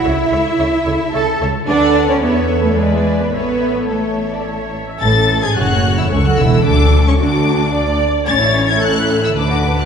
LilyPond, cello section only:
\new Staff \with { instrumentName = "Cello section" } { \clef bass \time 3/4 \key a \major \tempo 4 = 110 e'2 a'8 r8 | d'8. cis'16 b8. a16 gis8. b16 | b4 a4. r8 | a,8. gis,16 fis,8. e,16 cis,16 fis,16 e,8 |
d,8. cis,16 d,4. r8 | a,2 d,4 | }